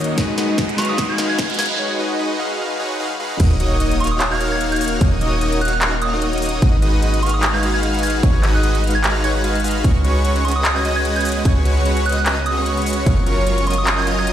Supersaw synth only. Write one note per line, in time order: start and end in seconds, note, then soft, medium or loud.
0.00 0.16 A#3 medium
0.00 0.16 D#4 medium
0.00 0.16 F#4 medium
0.00 0.16 C#5 medium
0.00 0.16 D#5 medium
0.18 0.29 F#4 medium
0.38 0.56 G#3 medium
0.38 0.56 D#4 medium
0.38 0.56 F#4 medium
0.38 0.56 B4 medium
0.38 0.56 D#5 medium
0.58 0.76 G#3 medium
0.58 0.76 D#4 medium
0.58 0.76 F#4 medium
0.58 0.76 B4 medium
0.58 0.76 D#5 medium
0.78 1.16 G#3 medium
0.78 1.16 D#4 medium
0.78 1.16 F#4 medium
0.78 1.16 B4 medium
0.78 1.16 F5 loud
1.18 1.67 G#3 loud
1.18 1.67 D#4 medium
1.18 1.67 F#4 medium
1.18 1.67 B4 medium
1.18 1.67 F5 loud
1.70 1.78 G#3 medium
1.70 1.78 D#4 medium
1.70 1.78 F#4 medium
1.70 1.78 B4 medium
1.70 1.78 F5 medium
1.79 1.97 G#3 medium
1.79 1.97 D#4 medium
1.79 1.97 F#4 medium
1.79 1.97 B4 medium
1.79 1.97 C#5 medium
1.99 2.17 G#3 medium
1.99 2.17 D#4 medium
1.99 2.17 F#4 medium
1.99 2.17 B4 medium
1.99 2.17 D#5 loud
2.19 2.37 G#3 loud
2.19 2.37 D#4 medium
2.19 2.37 F#4 medium
2.19 2.37 B4 medium
2.19 2.37 D#5 loud
2.39 2.78 G#3 medium
2.39 2.78 D#4 medium
2.39 2.78 F#4 medium
2.39 2.78 B4 medium
2.39 2.78 F5 loud
2.80 2.89 G#3 loud
2.80 2.89 D#4 medium
2.80 2.89 F#4 medium
2.80 2.89 B4 medium
2.80 2.89 C#5 loud
2.91 2.98 G#3 medium
2.91 2.98 D#4 medium
2.91 2.98 F#4 medium
2.91 2.98 B4 medium
2.91 2.98 F#5 medium
3.00 3.11 G#3 loud
3.00 3.11 D#4 medium
3.00 3.11 F#4 medium
3.00 3.11 B4 medium
3.00 3.11 F5 loud
3.20 3.38 G#3 medium
3.20 3.38 D#4 medium
3.20 3.38 F#4 medium
3.20 3.38 B4 medium
3.20 3.38 F5 medium
3.40 3.51 A#3 medium
3.40 3.51 D#4 medium
3.40 3.51 F#4 medium
3.60 3.78 A#3 medium
3.60 3.78 D#4 medium
3.60 3.78 F#4 medium
3.60 3.78 C#5 medium
3.60 3.78 D#5 loud
3.80 3.98 A#3 medium
3.80 3.98 D#4 medium
3.80 3.98 F#4 medium
3.80 3.98 C#5 medium
3.80 3.98 D#5 medium
4.00 4.39 A#3 medium
4.00 4.39 D#4 medium
4.00 4.39 F#4 medium
4.00 4.39 C#5 medium
4.00 4.39 F5 loud
4.41 4.89 A#3 loud
4.41 4.89 D#4 medium
4.41 4.90 F#4 medium
4.41 4.90 C#5 medium
4.41 4.89 F5 loud
4.92 5.00 A#3 medium
4.92 5.00 D#4 medium
4.92 5.00 F#4 medium
4.92 5.00 C#5 medium
4.92 5.00 F5 medium
5.01 5.19 D#4 medium
5.01 5.19 C#5 medium
5.01 5.19 D#5 medium
5.21 5.39 A#3 loud
5.21 5.39 D#4 medium
5.21 5.39 F#4 medium
5.21 5.39 C#5 medium
5.21 5.39 D#5 loud
5.42 5.60 A#3 loud
5.42 5.60 D#4 medium
5.42 5.60 F#4 medium
5.42 5.59 C#5 medium
5.42 5.60 D#5 loud
5.62 6.10 A#3 medium
5.62 6.10 D#4 medium
5.62 6.10 F#4 medium
5.62 6.10 C#5 medium
5.62 6.10 F5 loud
6.13 6.60 A#3 medium
6.13 6.60 D#4 medium
6.13 6.60 F#4 medium
6.13 6.60 C#5 medium
6.13 6.60 D#5 medium
6.62 6.73 G#3 medium
6.62 6.73 D#4 medium
6.62 6.73 F#4 medium
6.62 6.73 B4 medium
6.62 6.73 D#5 medium
6.82 7.00 G#3 medium
6.82 7.00 D#4 medium
6.82 7.00 F#4 medium
6.82 7.00 B4 medium
6.82 7.00 D#5 loud
7.02 7.20 G#3 medium
7.02 7.20 D#4 medium
7.02 7.20 F#4 medium
7.02 7.20 B4 medium
7.02 7.20 D#5 medium
7.22 7.61 G#3 medium
7.22 7.61 D#4 medium
7.22 7.61 F#4 medium
7.22 7.61 B4 medium
7.22 7.61 F5 loud
7.63 8.12 G#3 loud
7.63 8.12 D#4 medium
7.63 8.12 F#4 medium
7.63 8.12 B4 medium
7.63 8.12 F5 loud
8.14 8.22 G#3 medium
8.14 8.22 D#4 medium
8.14 8.22 F#4 medium
8.14 8.22 B4 medium
8.14 8.22 F5 medium
8.23 8.41 G#3 medium
8.23 8.41 D#4 medium
8.23 8.41 F#4 medium
8.23 8.41 C#5 medium
8.43 8.61 G#3 medium
8.43 8.61 D#4 medium
8.43 8.61 F#4 medium
8.43 8.61 B4 medium
8.43 8.61 D#5 loud
8.63 8.81 G#3 loud
8.63 8.81 D#4 medium
8.63 8.81 F#4 medium
8.63 8.81 B4 medium
8.63 8.81 D#5 loud
8.84 9.22 G#3 medium
8.84 9.22 D#4 medium
8.84 9.22 F#4 medium
8.84 9.22 B4 medium
8.84 9.22 F5 loud
9.24 9.33 G#3 medium
9.24 9.33 D#4 medium
9.24 9.33 F#4 medium
9.24 9.33 B4 medium
9.24 9.33 C#5 loud
9.35 9.42 G#3 medium
9.35 9.42 D#4 medium
9.35 9.42 F#4 medium
9.35 9.42 B4 medium
9.35 9.42 F#5 medium
9.44 9.55 G#3 loud
9.44 9.55 D#4 medium
9.44 9.55 F#4 medium
9.44 9.55 B4 medium
9.44 9.55 F5 loud
9.64 9.82 G#3 medium
9.64 9.82 D#4 medium
9.64 9.82 F#4 medium
9.64 9.82 B4 medium
9.64 9.82 F5 medium
9.84 9.96 G#3 medium
9.84 9.96 C#4 medium
9.84 9.96 F#4 medium
9.84 9.96 B4 medium
9.84 9.96 C#5 medium
10.04 10.22 G#3 medium
10.04 10.22 C#4 medium
10.04 10.22 F#4 medium
10.04 10.23 B4 medium
10.04 10.22 C#5 medium
10.24 10.43 G#3 medium
10.24 10.43 C#4 medium
10.24 10.43 F#4 medium
10.24 10.43 B4 medium
10.24 10.43 C#5 medium
10.45 10.83 G#3 loud
10.45 10.83 C#4 medium
10.45 10.83 F#4 medium
10.45 10.83 B4 medium
10.45 10.83 D#5 loud
10.85 11.34 G#3 loud
10.85 11.34 C#4 medium
10.85 11.34 F#4 medium
10.85 11.34 B4 medium
10.85 11.34 D#5 loud
11.36 11.44 G#3 medium
11.36 11.44 C#4 medium
11.36 11.44 F#4 medium
11.36 11.44 B4 medium
11.36 11.44 D#5 medium
11.45 11.63 G#3 medium
11.45 11.63 C#4 medium
11.45 11.63 F#4 medium
11.45 11.63 B4 medium
11.45 11.63 C#5 medium
11.65 11.84 G#3 loud
11.65 11.84 C#4 medium
11.65 11.84 F#4 medium
11.65 11.83 B4 medium
11.65 11.84 C#5 loud
11.86 12.04 G#3 loud
11.86 12.04 C#4 medium
11.86 12.04 F#4 medium
11.86 12.04 B4 medium
11.86 12.04 C#5 loud
12.06 12.55 G#3 medium
12.06 12.55 C#4 medium
12.06 12.55 F#4 medium
12.06 12.55 B4 medium
12.06 12.55 D#5 loud
12.57 13.04 G#3 medium
12.57 13.04 C#4 medium
12.57 13.04 F#4 medium
12.57 13.04 B4 medium
12.57 13.04 C#5 medium
13.06 13.18 F#3 medium
13.06 13.18 C#4 medium
13.06 13.18 F4 medium
13.06 13.18 A#4 medium
13.06 13.18 C#5 medium
13.26 13.45 F#3 medium
13.26 13.44 C#4 medium
13.26 13.45 F4 medium
13.26 13.45 A#4 medium
13.26 13.45 C#5 loud
13.47 13.65 F#3 medium
13.47 13.65 C#4 medium
13.47 13.65 F4 medium
13.47 13.65 A#4 medium
13.47 13.65 C#5 medium
13.67 14.05 F#3 medium
13.67 14.05 C#4 medium
13.67 14.05 F4 medium
13.67 14.05 A#4 medium
13.67 14.05 D#5 loud
14.07 14.33 F#3 loud
14.07 14.33 C#4 medium
14.07 14.33 F4 medium
14.07 14.33 A#4 medium
14.07 14.33 D#5 loud